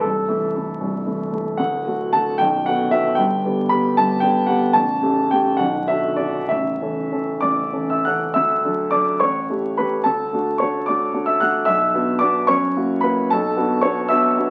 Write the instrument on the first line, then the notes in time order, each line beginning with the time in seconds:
grand piano
0.01 C1 C2 A4
0.28 E3 A3 E4
0.56 E3 A3 E4
0.80 C1 C2
1.05 E3 A3 E4
1.32 E3 A3 E4
1.57 D1 D2 F#5
1.87 D3 A3 F#4
2.13 D3 A3 F#4 A5
2.38 B0 B1 G5
2.66 D3 B3 F#4 F#5
2.91 D3 B3 F#4 E5
3.15 G1 G2 G5
3.45 D3 B3 G4
3.69 D3 B3 G4 B5
3.97 G1 G2 A5
4.20 D3 B3 G4 G5
4.47 D3 B3 G4 F#5
4.73 A0 A1 A5
5.01 C#3 A3 G4
5.31 C#3 A3 G4 G5
5.57 B0 B1 F#5
5.88 D3 D4 F#4 E5
6.16 D3 D4 F#4 D5
6.49 A0 A1 E5
6.81 E3 C#4 A4
7.11 E3 C#4 A4
7.41 A0 A1 D5 D6
7.72 E3 C#4 A4
7.90 E5 E6
8.05 E3 C#4 A4 F#5 F#6
8.34 D2 E5 E6
8.64 F#3 D4 A4
8.91 F#3 D4 A4 D5 D6
9.20 A1 C#5 C#6
9.49 A3 E4 G4
9.77 A3 E4 G4 B4 B5
10.04 D2 A4 A5
10.33 A3 D4 F#4
10.58 A3 D4 F#4 C#5 C#6
10.86 A3 D4 F#4 D5 D6
11.13 A3 D4 F#4
11.26 E5 E6
11.40 A3 D4 F#4 F#5 F#6
11.65 B1 E5 E6
11.94 B3 D4 F#4
12.19 B3 D4 F#4 D5 D6
12.47 F#2 C#5 C#6
12.76 A#3 E4 F#4
13.01 A#3 E4 F#4 B4 B5
13.30 B1 A4 A5
13.56 B3 D4 F#4
13.81 B3 D4 F#4 C#5 C#6
14.08 B3 D4 F#4 E5 E6
14.37 B3 D4 F#4